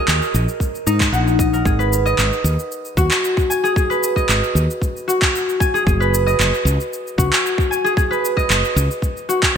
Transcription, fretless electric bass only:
0, 0, Header, 1, 2, 480
1, 0, Start_track
1, 0, Key_signature, 5, "minor"
1, 0, Tempo, 526316
1, 1515, Time_signature, 4, 2, 24, 8
1, 8729, End_track
2, 0, Start_track
2, 0, Title_t, "Fretless electric bass"
2, 0, Program_c, 0, 35
2, 73, Note_on_c, 0, 39, 78
2, 179, Note_off_c, 0, 39, 0
2, 313, Note_on_c, 0, 34, 98
2, 418, Note_off_c, 0, 34, 0
2, 792, Note_on_c, 0, 44, 81
2, 995, Note_off_c, 0, 44, 0
2, 1025, Note_on_c, 0, 34, 95
2, 1479, Note_off_c, 0, 34, 0
2, 1508, Note_on_c, 0, 32, 95
2, 1961, Note_off_c, 0, 32, 0
2, 1991, Note_on_c, 0, 32, 73
2, 2097, Note_off_c, 0, 32, 0
2, 2227, Note_on_c, 0, 39, 96
2, 2336, Note_off_c, 0, 39, 0
2, 2708, Note_on_c, 0, 39, 87
2, 2816, Note_off_c, 0, 39, 0
2, 3912, Note_on_c, 0, 32, 75
2, 4018, Note_off_c, 0, 32, 0
2, 4150, Note_on_c, 0, 39, 93
2, 4257, Note_off_c, 0, 39, 0
2, 5349, Note_on_c, 0, 30, 98
2, 5801, Note_off_c, 0, 30, 0
2, 5831, Note_on_c, 0, 30, 78
2, 5937, Note_off_c, 0, 30, 0
2, 6065, Note_on_c, 0, 37, 95
2, 6175, Note_off_c, 0, 37, 0
2, 6551, Note_on_c, 0, 37, 87
2, 6657, Note_off_c, 0, 37, 0
2, 7752, Note_on_c, 0, 30, 77
2, 7858, Note_off_c, 0, 30, 0
2, 7991, Note_on_c, 0, 37, 94
2, 8098, Note_off_c, 0, 37, 0
2, 8729, End_track
0, 0, End_of_file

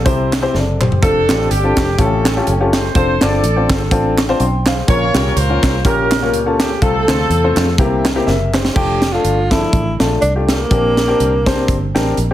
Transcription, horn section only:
0, 0, Header, 1, 2, 480
1, 0, Start_track
1, 0, Key_signature, -1, "major"
1, 0, Tempo, 484653
1, 1013, Time_signature, 4, 2, 24, 8
1, 12217, End_track
2, 0, Start_track
2, 0, Title_t, "Horn section"
2, 0, Program_c, 0, 61
2, 1017, Note_on_c, 0, 69, 110
2, 1023, Note_on_c, 0, 60, 83
2, 1027, Note_on_c, 0, 62, 80
2, 1460, Note_off_c, 0, 69, 0
2, 1487, Note_off_c, 0, 60, 0
2, 1489, Note_off_c, 0, 62, 0
2, 1490, Note_on_c, 0, 67, 97
2, 1499, Note_on_c, 0, 60, 66
2, 1501, Note_on_c, 0, 62, 69
2, 1940, Note_off_c, 0, 60, 0
2, 1941, Note_off_c, 0, 62, 0
2, 1968, Note_off_c, 0, 67, 0
2, 1970, Note_on_c, 0, 69, 90
2, 1978, Note_on_c, 0, 61, 66
2, 1979, Note_on_c, 0, 60, 68
2, 2447, Note_off_c, 0, 69, 0
2, 2725, Note_on_c, 0, 72, 86
2, 2890, Note_off_c, 0, 60, 0
2, 2890, Note_off_c, 0, 61, 0
2, 2918, Note_off_c, 0, 72, 0
2, 2931, Note_on_c, 0, 69, 72
2, 2933, Note_on_c, 0, 72, 104
2, 3174, Note_off_c, 0, 72, 0
2, 3180, Note_off_c, 0, 69, 0
2, 3187, Note_on_c, 0, 74, 98
2, 3192, Note_on_c, 0, 69, 80
2, 3666, Note_off_c, 0, 74, 0
2, 4107, Note_off_c, 0, 69, 0
2, 4841, Note_on_c, 0, 70, 85
2, 4845, Note_on_c, 0, 65, 82
2, 4848, Note_on_c, 0, 73, 113
2, 5289, Note_off_c, 0, 73, 0
2, 5309, Note_off_c, 0, 65, 0
2, 5320, Note_on_c, 0, 65, 76
2, 5320, Note_on_c, 0, 72, 98
2, 5758, Note_off_c, 0, 70, 0
2, 5764, Note_off_c, 0, 65, 0
2, 5797, Note_off_c, 0, 72, 0
2, 5800, Note_on_c, 0, 70, 90
2, 5807, Note_on_c, 0, 61, 61
2, 5807, Note_on_c, 0, 67, 65
2, 6243, Note_off_c, 0, 70, 0
2, 6526, Note_off_c, 0, 67, 0
2, 6538, Note_on_c, 0, 67, 93
2, 6720, Note_off_c, 0, 61, 0
2, 6738, Note_off_c, 0, 67, 0
2, 6756, Note_on_c, 0, 69, 117
2, 6760, Note_on_c, 0, 65, 83
2, 6762, Note_on_c, 0, 60, 90
2, 7678, Note_off_c, 0, 60, 0
2, 7678, Note_off_c, 0, 65, 0
2, 7715, Note_off_c, 0, 69, 0
2, 12217, End_track
0, 0, End_of_file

